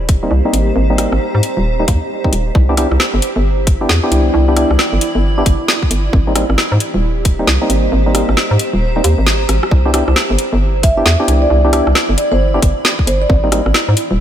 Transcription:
Already playing: D#1 G4 C5
0.09 kick, closed hi-hat
0.16 A#5
0.23 G3 A#3 C4 D#4
0.31 C2
0.45 G3 A#3 C4 D#4
0.53 G#1, closed hi-hat
0.76 G#1
0.90 G3 A#3 C4 D#4
0.98 G3 A#3 C4 D#4, cross-stick, closed hi-hat
1.12 G#1, cross-stick
1.35 G#2
1.43 closed hi-hat
1.57 D#1
1.80 G3 A#3 C4 D#4
1.88 D#2, kick, closed hi-hat
2.24 G3 A#3 C4 D#4, kick
2.32 D#1, closed hi-hat
2.55 C2 E4, kick
2.69 B3 D4 E4 G4
2.77 B3 D4 E4 G4, cross-stick, closed hi-hat
2.91 C2, cross-stick
3.00 snare
3.14 G1
3.22 closed hi-hat
3.36 G1
3.41 D5
3.67 kick, closed hi-hat
3.81 B3 D4 E4 G4
3.89 E2, snare
4.03 B3 D4 E4 G4
4.12 C2, closed hi-hat
4.17 B5
4.34 C2
4.48 B3 D4 E4 G4
4.56 B3 D4 E4 G4, cross-stick, closed hi-hat
4.70 C2, cross-stick
4.79 snare
4.93 G1
5.01 closed hi-hat
5.15 G1
5.38 B3 D4 E4 G4
5.46 G1, kick, closed hi-hat
5.68 snare
5.83 kick
5.91 G1, closed hi-hat
6.13 G#1 G4, kick
6.27 G3 A#3 C4 D#4
6.34 G3 A#3 C4 D#4 C5, cross-stick, closed hi-hat
6.50 G#1, cross-stick
6.58 snare
6.72 G#2
6.80 closed hi-hat
6.94 D#1
7.25 kick, closed hi-hat
7.39 G3 A#3 C4 D#4
7.47 C2, snare
7.62 G3 A#3 C4 D#4
7.70 G#1, closed hi-hat
7.75 A#5
7.92 G#1
8.06 G3 A#3 C4 D#4
8.15 G3 A#3 C4 D#4, cross-stick, closed hi-hat
8.29 G#1, cross-stick
8.37 snare
8.51 G#2
8.59 closed hi-hat
8.74 D#1
8.96 G3 A#3 C4 D#4
9.04 D#2, closed hi-hat
9.18 G#1
9.27 snare
9.49 G#1, cross-stick, closed hi-hat
9.63 cross-stick
9.71 C2 E4, kick
9.85 B3 D4 E4 G4
9.94 B3 D4 E4 G4, cross-stick, closed hi-hat
10.08 C2, cross-stick
10.16 snare
10.30 G1
10.39 closed hi-hat
10.53 G1
10.63 D5
10.83 E5, kick, closed hi-hat
10.97 B3 D4 E4 G4 E5
11.06 E2, snare
11.20 B3 D4 E4 G4
11.28 C2, closed hi-hat
11.34 B5
11.42 D5
11.50 C2
11.65 B3 D4 E4 G4
11.73 B3 D4 E4 G4, cross-stick, closed hi-hat
11.87 C2, cross-stick
11.95 snare
12.09 G1
12.18 D5, closed hi-hat
12.32 G1 C5
12.54 B3 D4 E4 G4
12.62 G1, kick, closed hi-hat
12.85 snare
12.99 kick
13.07 G1 C5, closed hi-hat
13.22 D5
13.30 G#1 G4, kick
13.44 G3 A#3 C4 D#4
13.52 G3 A#3 C4 D#4, cross-stick, closed hi-hat
13.66 G#1, cross-stick
13.71 C5, snare
13.89 G#2
13.97 closed hi-hat
14.11 D#1

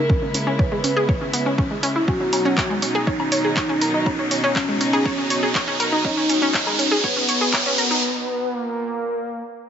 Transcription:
Already playing: C#3 G#3 E4 A#4, riser
0.10 C#4, kick
0.22 C#4
0.34 C#4, open hi-hat
0.47 C#4
0.59 B4 C#5, kick
0.72 G#3
0.84 C#4, open hi-hat
0.96 G#4
1.09 C#5, kick
1.21 C#4
1.33 B3, open hi-hat
1.46 C#4
1.58 C#4, kick
1.71 G#3
1.83 C#4, open hi-hat
1.96 E4
2.08 B2 F#3 C#4 D#4 F#4, kick
2.21 C#4
2.33 C#4, open hi-hat, low woodblock
2.45 C#4
2.58 C#5, kick, clap
2.70 G#3
2.82 C#4, open hi-hat
2.95 G#4
3.07 D#4 C#5, kick
3.20 C#4, low woodblock
3.32 C#5, open hi-hat
3.45 G#4
3.57 C#5, kick, clap
3.69 C#4
3.81 A#4, open hi-hat
3.94 D#4
4.06 C#4, kick, low woodblock
4.19 C#4
4.31 C#4, open hi-hat
4.44 C#4
4.56 C#4 C#5, kick, clap
4.68 G#3
4.81 C#4, open hi-hat
4.93 G#4, low woodblock
5.05 C#5, kick
5.18 C#4
5.30 C#5, open hi-hat
5.43 G#4
5.55 C#5, kick, clap
5.68 C#4
5.80 A#4, open hi-hat, low woodblock
5.92 D#4
6.05 C#4 D#4, kick
6.17 C#4
6.29 C#4, open hi-hat
6.42 C#4
6.54 C#5, kick, clap
6.67 G#3, low woodblock
6.79 C#4, open hi-hat
6.91 G#4
7.04 B3 C#5, kick
7.16 C#4
7.29 C#5, open hi-hat
7.41 G#4
7.53 C#5, kick, clap, low woodblock
7.66 C#4
7.78 A#4, open hi-hat
7.91 D#4
8.53 A#3

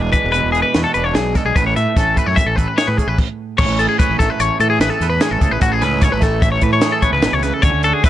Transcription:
Already playing: E1 E3 G#3 D4 B4
0.02 G#4
0.12 G#3 B4, kick, closed hi-hat
0.24 E1
0.32 B2 B4, closed hi-hat
0.44 E1
0.52 G#4, closed hi-hat
0.56 B4
0.62 B4
0.74 E2 F#4, snare, closed hi-hat
0.84 A4
0.94 E1 D4 B4, closed hi-hat
1.04 C#5
1.15 B1 F#3 G#4, snare, closed hi-hat
1.35 G#3 A4, kick, snare, closed hi-hat
1.45 B1 G#4
1.56 A1 A2 B4, kick, closed hi-hat
1.67 C#5
1.76 A2 A3 E5, closed hi-hat
1.96 A1 C#4 A4, kick, snare, closed hi-hat
2.16 A3 B4, kick, closed hi-hat
2.26 F#2 C#5
2.36 E3 E5, kick, closed hi-hat
2.46 A1 A4
2.56 A4 B4, kick, closed hi-hat
2.68 B4
2.78 G#4 C#5, snare, closed hi-hat
2.87 A2 B4
2.98 C#4 G#4, kick, closed hi-hat
3.07 A1 B4
3.18 kick, crash
3.58 A1 A2 C#4 C#5, kick, crash
3.68 A1
3.79 G#4 A4, closed hi-hat
3.89 G#4
3.99 B4 C#5, kick, closed hi-hat
4.09 A1
4.19 A1 A3 A4, kick, snare, closed hi-hat
4.30 B4
4.40 A1 C#5, closed hi-hat
4.60 A2 E3 A4, closed hi-hat
4.70 G#4
4.80 A1 G#4 B4, snare, closed hi-hat
4.90 A4
5.01 E2 B4, snare, closed hi-hat
5.10 B4
5.20 A2 C#4 G#4, snare, closed hi-hat
5.31 A1 A4
5.41 C#2 G#4, kick, closed hi-hat
5.51 A1 B4
5.61 A1 A2 C#4 F#4, kick, closed hi-hat
5.72 G#4
5.81 C#2 G#4 B4, snare, closed hi-hat
6.01 C#5, kick, snare, closed hi-hat
6.12 A1 B4
6.20 A3 A4, kick, snare, closed hi-hat
6.42 E5, kick, closed hi-hat
6.52 C#5
6.61 A2 E3 B4, kick, closed hi-hat
6.73 C#5
6.81 G#4, snare, closed hi-hat
6.92 A4
7.02 A1 B4 C#5, kick, closed hi-hat
7.12 C#2 B4
7.22 A1 B2, snare, closed hi-hat
7.33 C#2 C#5
7.43 C#3 B4, snare, closed hi-hat
7.54 A4
7.62 D2 D3 C#4 C#5, kick, closed hi-hat
7.74 D2
7.83 F#4 A4, closed hi-hat
7.93 G#4
8.04 B4 E5, kick, closed hi-hat

